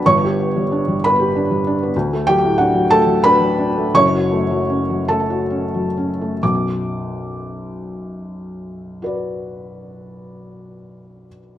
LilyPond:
<<
  \new Staff \with { instrumentName = "Felt piano" } { \time 6/8 \key b \minor \tempo 4. = 50 << { <cis'' cis'''>4. <b' b''>4. | r8 <g' g''>8 <fis' fis''>8 <a' a''>8 <b' b''>4 | <cis'' cis'''>4. <a' a''>4. | d'''2.~ |
d'''2. | } \\ { r2. | r2. | r2. | r2. |
<fis' b' d''>2. | } >> }
  \new Staff \with { instrumentName = "Felt piano" } { \time 6/8 \key b \minor <g,, g,>16 g'16 b16 g16 d'16 g16 b16 g'16 d'16 g16 d'16 b16 | d,16 a16 fis16 a,16 d'16 fis16 a16 fis16 d'16 fis16 d'16 a16 | <fis,, fis,>16 fis'16 a16 fis16 cis'16 fis16 a16 fis'16 cis'16 fis16 cis'16 a16 | <b,, fis,>2.~ |
<b,, fis,>2. | }
>>